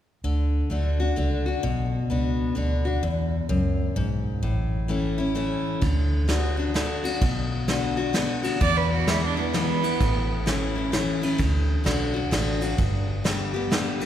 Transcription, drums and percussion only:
5.82 kick, ride
6.29 snare, ride
6.75 snare, ride
7.05 ride
7.21 kick, ride
7.68 snare, ride
8.14 snare, ride
8.44 ride
8.61 kick, ride
9.08 snare, ride
9.54 snare, ride
9.84 ride
10.01 kick, ride
10.47 snare, ride
10.93 snare, ride
11.23 ride
11.39 kick, ride
11.86 snare, ride
12.32 snare, ride
12.62 ride
12.79 kick, ride
13.25 snare, ride
13.72 snare, ride
14.01 ride

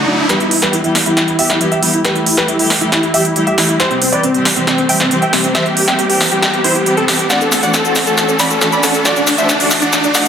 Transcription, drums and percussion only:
0.29 snare, closed hi-hat
0.40 closed hi-hat
0.51 open hi-hat
0.62 snare, closed hi-hat
0.73 closed hi-hat
0.84 closed hi-hat
0.95 snare, open hi-hat
1.06 closed hi-hat
1.17 snare, closed hi-hat
1.28 closed hi-hat
1.39 open hi-hat
1.50 snare, closed hi-hat
1.61 closed hi-hat
1.72 closed hi-hat
1.83 open hi-hat
1.94 closed hi-hat
2.05 snare, closed hi-hat
2.15 closed hi-hat
2.26 open hi-hat
2.37 snare
2.48 closed hi-hat
2.59 open hi-hat
2.70 snare, open hi-hat
2.81 closed hi-hat
2.92 snare, closed hi-hat
3.03 closed hi-hat
3.14 open hi-hat
3.25 closed hi-hat
3.36 closed hi-hat
3.47 closed hi-hat
3.58 snare, open hi-hat
3.69 closed hi-hat
3.80 snare, closed hi-hat
3.91 closed hi-hat
4.02 open hi-hat
4.13 closed hi-hat
4.23 closed hi-hat
4.34 closed hi-hat
4.45 snare, open hi-hat
4.56 closed hi-hat
4.67 snare, closed hi-hat
4.78 closed hi-hat
4.89 open hi-hat
5.00 snare
5.11 closed hi-hat
5.22 closed hi-hat
5.33 snare, open hi-hat
5.44 closed hi-hat
5.55 snare, closed hi-hat
5.66 closed hi-hat
5.77 open hi-hat
5.88 snare
5.99 closed hi-hat
6.10 open hi-hat
6.21 snare, open hi-hat
6.32 closed hi-hat
6.42 snare, closed hi-hat
6.53 closed hi-hat
6.64 open hi-hat
6.75 closed hi-hat
6.86 closed hi-hat
6.97 closed hi-hat
7.08 snare, open hi-hat
7.19 closed hi-hat
7.30 snare, closed hi-hat, shaker
7.41 closed hi-hat, shaker
7.52 snare, open hi-hat, shaker
7.63 closed hi-hat, shaker
7.74 snare, closed hi-hat, shaker
7.85 closed hi-hat, shaker
7.96 snare, open hi-hat, shaker
8.07 closed hi-hat, shaker
8.18 snare, closed hi-hat, shaker
8.29 closed hi-hat, shaker
8.40 snare, open hi-hat, shaker
8.50 closed hi-hat, shaker
8.61 snare, closed hi-hat, shaker
8.72 closed hi-hat, shaker
8.83 snare, open hi-hat, shaker
8.94 closed hi-hat, shaker
9.05 snare, closed hi-hat, shaker
9.16 closed hi-hat, shaker
9.27 snare, open hi-hat, shaker
9.38 closed hi-hat, shaker
9.49 snare, closed hi-hat, shaker
9.60 open hi-hat, shaker
9.71 snare, open hi-hat, shaker
9.82 closed hi-hat, shaker
9.93 snare, closed hi-hat, shaker
10.04 closed hi-hat, shaker
10.15 snare, open hi-hat, shaker

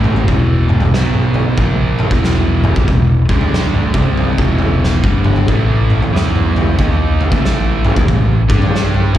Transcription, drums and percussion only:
0.04 floor tom, mid tom
0.16 floor tom
0.28 kick, floor tom
0.69 mid tom
0.81 floor tom
0.94 snare
1.14 mid tom
1.34 floor tom
1.58 kick, floor tom
1.99 floor tom
2.11 kick
2.24 snare
2.64 floor tom, mid tom
2.76 kick, floor tom
2.88 kick, floor tom
3.29 kick, mid tom
3.41 floor tom
3.54 snare
3.74 mid tom
3.94 kick, floor tom
4.17 floor tom
4.38 kick
4.58 floor tom
4.84 snare
5.04 kick
5.24 floor tom, mid tom
5.36 floor tom
5.48 kick, floor tom
5.90 mid tom
6.02 floor tom
6.16 snare
6.36 mid tom
6.56 floor tom
6.79 kick, floor tom
7.21 floor tom
7.32 kick
7.45 snare
7.85 floor tom, mid tom
7.96 kick, floor tom
8.08 kick, floor tom
8.50 kick, mid tom
8.62 floor tom
8.76 snare
8.94 floor tom
9.15 kick, floor tom

